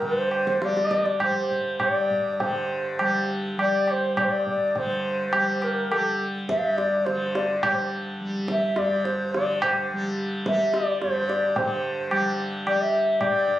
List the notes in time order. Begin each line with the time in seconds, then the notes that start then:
Already playing: G2 G3
0.02 D3 C5, tabla tin, tabla ge
0.31 tabla na
0.47 tabla ke
0.62 G3 D5, tabla te
0.77 tabla te
0.91 tabla ke
1.05 tabla te
1.20 G3 C5, tabla na, tabla ge
1.50 tabla ge
1.80 G2 D5, tabla na, tabla ge
2.11 tabla ge
2.33 D5
2.39 D3 C5, tabla tin, tabla ge
2.99 G3, tabla na
3.58 G3 D5, tabla na
3.87 C5, tabla na
4.17 G2 D5, tabla na, tabla ge
4.24 C5
4.31 D5
4.47 D5, tabla ge
4.75 D3 C5, tabla tin, tabla ge
5.33 G3, tabla na
5.62 A#4, tabla na
5.91 G3 A4, tabla na
6.49 G2 E5, tabla ke
6.58 F5
6.64 E5
6.77 D5, tabla te
7.05 D3 C5, tabla te
7.35 D5, tabla te
7.63 G3 C5, tabla na, tabla ge
8.20 G3
8.48 E5, tabla ke
8.76 G2 D5, tabla te
9.05 C5, tabla te
9.31 D3 D5, tabla te
9.62 C5, tabla na, tabla ge
9.93 G3
10.46 G3 E5, tabla ke
10.74 D5, tabla te
11.02 G2 C5, tabla te
11.29 D5, tabla te
11.56 D3 C5, tabla tin, tabla ge
12.11 G3, tabla na
12.66 G3 D5, tabla na
12.81 E5
13.20 G2 D5, tabla na, tabla ge
13.49 tabla ge